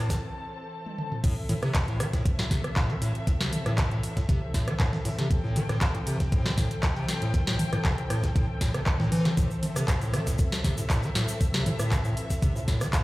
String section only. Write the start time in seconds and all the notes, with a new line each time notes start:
Already playing: E3 C4 A4 A5
1.24 E3 C4 A4 E5
5.31 G5
9.37 E5